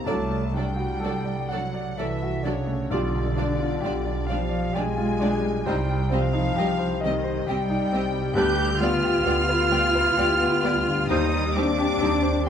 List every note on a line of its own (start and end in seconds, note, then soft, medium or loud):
0.06 2.87 C2 medium
0.06 0.91 C2 medium
0.06 0.43 F#3 medium
0.06 0.16 F#3 medium
0.06 0.55 A3 medium
0.06 0.54 A3 soft
0.06 0.16 D4 medium
0.06 0.43 A4 medium
0.06 0.15 A4 soft
0.06 0.15 D5 soft
0.06 0.44 D5 soft
0.06 0.52 A5 medium
0.06 0.55 A5 medium
0.30 0.69 A3 soft
0.52 1.48 G3 medium
0.52 1.51 G3 medium
0.52 0.92 D4 soft
0.52 0.64 A4 soft
0.52 1.52 G5 medium
0.57 0.65 F#3 soft
0.57 0.65 D4 soft
0.57 0.65 D5 soft
0.57 1.50 G5 medium
0.76 1.16 F#4 medium
1.00 1.87 C2 medium
1.00 1.12 F#3 soft
1.00 1.11 D4 soft
1.00 1.40 A4 medium
1.04 1.13 A4 medium
1.04 1.12 D5 soft
1.24 1.64 D5 soft
1.49 1.98 F#3 medium
1.49 1.59 A4 soft
1.49 1.59 D5 soft
1.49 1.87 F#5 medium
1.49 1.99 F#5 medium
1.49 1.98 F#5 medium
1.53 1.61 F#3 soft
1.53 1.61 D4 soft
1.74 2.12 D5 soft
1.97 2.80 C2 medium
1.97 2.44 E3 medium
1.97 2.07 F#3 soft
1.97 2.08 D4 soft
1.97 2.35 A4 medium
1.97 2.07 A4 soft
1.97 2.06 D5 medium
1.97 2.45 E5 medium
2.22 2.59 F#4 medium
2.43 2.76 C#3 medium
2.43 2.91 C#3 medium
2.43 2.53 F#3 soft
2.43 2.82 D4 soft
2.43 2.53 D4 soft
2.43 2.53 A4 medium
2.43 2.93 C#5 medium
2.43 2.92 C#5 medium
2.43 2.53 D5 soft
2.67 2.91 A3 soft
2.90 5.63 B1 medium
2.90 3.73 B1 medium
2.90 4.27 D3 medium
2.90 4.30 D3 medium
2.90 3.00 G3 medium
2.90 3.27 G3 medium
2.90 3.00 D4 medium
2.90 2.99 F4 soft
2.90 3.27 F4 medium
2.90 4.03 D5 medium
2.90 3.26 D5 soft
2.90 3.00 D5 medium
2.90 4.28 D5 medium
3.14 3.51 G3 soft
3.36 3.47 G3 soft
3.36 3.74 D4 medium
3.36 3.47 D4 soft
3.36 3.46 F4 medium
3.36 3.46 D5 medium
3.59 3.97 F4 medium
3.80 4.65 B1 medium
3.80 3.92 F4 medium
3.80 4.19 G4 medium
3.85 3.93 G3 soft
3.85 3.93 D4 soft
3.85 3.93 D5 medium
4.05 4.43 D5 soft
4.27 4.75 F3 medium
4.27 4.38 F4 soft
4.27 4.37 D5 medium
4.27 4.65 F5 medium
4.27 4.76 F5 medium
4.31 4.76 F3 medium
4.31 4.40 G3 medium
4.31 4.40 D4 medium
4.31 4.77 F5 medium
4.49 4.88 D5 medium
4.73 5.56 B1 medium
4.73 4.85 G3 medium
4.73 5.67 G#3 medium
4.73 4.84 D4 medium
4.73 4.82 F4 soft
4.73 5.11 G4 medium
4.73 4.83 D5 medium
4.73 5.40 G#5 medium
4.73 5.68 G#5 medium
4.97 5.35 F4 medium
5.20 5.31 G3 medium
5.20 5.57 D4 medium
5.20 5.31 D4 medium
5.20 5.29 F4 medium
5.20 5.29 D5 medium
5.42 5.66 G3 soft
5.65 8.32 C2 medium
5.65 6.47 C2 medium
5.65 6.11 G3 medium
5.65 6.12 G3 medium
5.65 6.01 G3 medium
5.65 5.75 G3 medium
5.65 5.76 C4 medium
5.65 6.02 D#4 medium
5.65 5.75 G4 medium
5.65 6.01 C5 medium
5.65 5.75 D#5 medium
5.65 6.14 G5 medium
5.65 6.13 G5 medium
5.89 6.26 G3 medium
6.10 7.02 F3 medium
6.10 7.04 F3 medium
6.10 6.21 G3 medium
6.10 6.48 C4 medium
6.10 6.21 C4 medium
6.10 6.20 G4 medium
6.10 6.20 D#5 medium
6.10 7.06 F5 medium
6.10 7.04 F5 medium
6.33 6.71 D#4 medium
6.56 7.38 C2 medium
6.56 6.66 G3 medium
6.56 6.66 C4 soft
6.56 6.93 G4 medium
6.56 6.66 G4 medium
6.56 6.66 D#5 medium
6.79 7.16 C5 medium
7.00 7.48 D#3 medium
7.00 7.49 D#3 medium
7.00 7.12 G4 medium
7.00 7.38 D#5 medium
7.00 7.48 D#5 medium
7.00 7.50 D#5 medium
7.04 7.12 G3 medium
7.04 7.13 C4 medium
7.04 7.13 D#5 medium
7.24 7.61 C5 medium
7.47 8.26 C2 medium
7.47 8.34 G3 medium
7.47 8.35 G3 medium
7.47 7.57 G3 medium
7.47 7.57 C4 medium
7.47 7.83 G4 medium
7.47 7.57 G4 medium
7.47 7.58 D#5 medium
7.47 8.36 G5 medium
7.47 8.39 G5 medium
7.70 8.05 D#4 medium
7.93 8.01 G3 medium
7.93 8.28 C4 medium
7.93 8.01 C4 medium
7.93 8.02 G4 medium
7.93 8.02 D#5 medium
8.14 8.36 G3 medium
8.34 11.04 D2 medium
8.34 9.15 D2 medium
8.34 8.70 G3 medium
8.34 8.44 G3 medium
8.34 8.45 B3 medium
8.34 8.70 D4 medium
8.34 8.80 G4 medium
8.34 8.81 G4 medium
8.34 8.45 G4 medium
8.34 8.70 B4 medium
8.34 8.45 D5 medium
8.34 8.80 G6 loud
8.34 8.82 G6 medium
8.57 8.94 G3 medium
8.79 8.89 G3 medium
8.79 8.89 B3 medium
8.79 9.18 B3 medium
8.79 11.06 F4 medium
8.79 10.94 F4 loud
8.79 8.89 G4 medium
8.79 8.90 D5 medium
8.79 11.09 F6 loud
8.79 11.10 F6 loud
9.03 9.40 G4 medium
9.25 10.06 D2 medium
9.25 9.34 G3 medium
9.25 9.62 B3 medium
9.25 9.34 B3 medium
9.25 9.34 G4 medium
9.25 9.34 D5 medium
9.49 9.86 B4 medium
9.71 9.79 G3 medium
9.71 9.79 B3 medium
9.71 9.80 G4 medium
9.71 9.80 D5 medium
9.71 10.08 G5 medium
9.95 10.32 B4 medium
10.16 10.98 D2 medium
10.16 10.25 G3 medium
10.16 10.25 B3 medium
10.16 10.54 G4 medium
10.16 10.26 G4 medium
10.16 10.27 D5 medium
10.40 10.77 B3 medium
10.63 11.00 G3 medium
10.63 10.71 G3 medium
10.63 10.72 B3 medium
10.63 10.72 G4 medium
10.63 10.72 D5 medium
10.88 11.10 D3 medium
11.08 11.90 D#2 medium
11.08 12.49 D#2 medium
11.08 11.18 G3 medium
11.08 11.45 G3 medium
11.08 11.45 D#4 medium
11.08 11.18 D#4 medium
11.08 11.56 D#4 medium
11.08 11.55 D#4 medium
11.08 11.17 G4 medium
11.08 11.17 C5 medium
11.08 11.45 C5 medium
11.08 11.55 D#6 loud
11.08 11.58 D#6 medium
11.34 11.70 G3 medium
11.55 11.64 G3 medium
11.55 11.93 C4 medium
11.55 12.47 D4 medium
11.55 11.65 D#4 medium
11.55 11.65 G4 medium
11.55 11.65 C5 medium
11.55 12.46 D6 loud
11.55 12.49 D6 medium
11.79 12.15 G4 medium
11.99 12.49 D#2 medium
11.99 12.10 G3 medium
11.99 12.36 C4 medium
11.99 12.10 D#4 medium
11.99 12.10 C5 medium
12.03 12.11 G4 medium
12.22 12.49 C5 medium